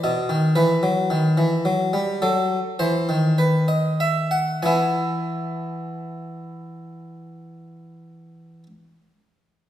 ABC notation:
X:1
M:4/4
L:1/16
Q:1/4=47
K:Bphr
V:1 name="Harpsichord"
^d2 B6 A2 c2 B d e f | [B,E^g]16 |]
V:2 name="Harpsichord" clef=bass
B,, ^D, E, F, D, E, F, G, F,2 E, D,4- D, | E,16 |]